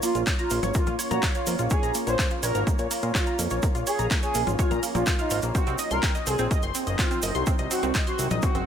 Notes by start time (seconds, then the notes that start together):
Already playing: A#3 C#4 F4 C#5
0.03 A#3 F4, open hi-hat, shaker
0.15 A#1 F4, closed hi-hat, shaker
0.27 C#5, kick, clap, closed hi-hat, shaker
0.39 F4 A#5, closed hi-hat, shaker
0.50 A#1 A#3, open hi-hat, shaker
0.63 G#1 C#5, closed hi-hat, percussion blips, shaker
0.74 A#3 F4, kick, closed hi-hat, shaker
0.87 A#2 F4, closed hi-hat, percussion blips, shaker
0.99 C#5, open hi-hat, shaker
1.11 A#2 F#4 A#5, closed hi-hat, percussion blips, shaker
1.23 A#3, kick, clap, closed hi-hat, shaker
1.35 F4 C#5, closed hi-hat, shaker
1.47 F2 A#3, open hi-hat, shaker
1.59 A#1 F4, closed hi-hat, shaker
1.70 G#4 C#5, kick, closed hi-hat, shaker
1.83 A#1 A#5, closed hi-hat, shaker
1.94 A#3, open hi-hat, shaker
2.07 A#1 C5 C#5, closed hi-hat, shaker
2.19 A#3, kick, clap, closed hi-hat, shaker
2.30 F4, closed hi-hat, shaker
2.43 A#1 A#4 C#5, open hi-hat, shaker
2.55 G#1 A#5, closed hi-hat, shaker
2.67 A#3, kick, closed hi-hat, shaker
2.79 A#2 C#5, closed hi-hat, shaker
2.91 A#3, open hi-hat, shaker
3.02 A#2 F4, closed hi-hat, shaker
3.15 F4 C#5, kick, clap, closed hi-hat, shaker
3.26 A#5, closed hi-hat, shaker
3.39 F2 A#3, open hi-hat, shaker
3.50 A#1 C#5, closed hi-hat, shaker
3.62 A#3, kick, closed hi-hat, shaker
3.75 A#1 F4, closed hi-hat, shaker
3.87 G#4 C#5, open hi-hat, shaker
3.99 A#1 A#5, closed hi-hat, shaker
4.11 A#3, kick, clap, closed hi-hat, shaker
4.23 G#4 C#5, closed hi-hat, shaker
4.35 A#1 A#3, open hi-hat, shaker
4.47 G#1 F4, closed hi-hat, percussion blips, shaker
4.59 F4 C#5, kick, closed hi-hat, shaker
4.71 A#2 A#5, closed hi-hat, percussion blips, shaker
4.83 A#3, open hi-hat, shaker
4.95 A#1 A#3 F4, closed hi-hat, percussion blips, shaker
5.06 F4, kick, clap, closed hi-hat, shaker
5.19 D#4 F4, closed hi-hat, shaker
5.30 G#1 F4, open hi-hat, shaker
5.42 A#1 A#3, closed hi-hat, shaker
5.55 F#3 C4 D#4 F#4 C5, kick, closed hi-hat, shaker
5.67 C2 C4, closed hi-hat, shaker
5.78 D#5, open hi-hat, shaker
5.91 C2 A#4 C6, closed hi-hat, shaker
6.03 C4, kick, clap, closed hi-hat, shaker
6.15 D#5, closed hi-hat, shaker
6.27 C2 C4 G#4, open hi-hat, shaker
6.38 A#1 C4, closed hi-hat, shaker
6.51 D#5, kick, closed hi-hat, shaker
6.62 F#1 C6, closed hi-hat, shaker
6.75 C4, open hi-hat, shaker
6.87 F#1 D#5, closed hi-hat, shaker
6.99 C4 F4, kick, clap, closed hi-hat, shaker
7.11 C4, closed hi-hat, shaker
7.22 F#1 D#5, open hi-hat, shaker
7.35 C2 C6, closed hi-hat, shaker
7.46 C4 A#4, kick, closed hi-hat, shaker
7.58 C2 D#5, closed hi-hat, shaker
7.71 C4 F#4, open hi-hat, shaker
7.83 C2 C4, closed hi-hat, shaker
7.95 D#5, kick, clap, closed hi-hat, shaker
8.07 F#4 C6, closed hi-hat, shaker
8.19 C2 C4, open hi-hat, shaker
8.31 A#1 D#5, closed hi-hat, percussion blips, shaker
8.42 C4 F#4, kick, closed hi-hat, shaker
8.55 F#1 C4, closed hi-hat, percussion blips, shaker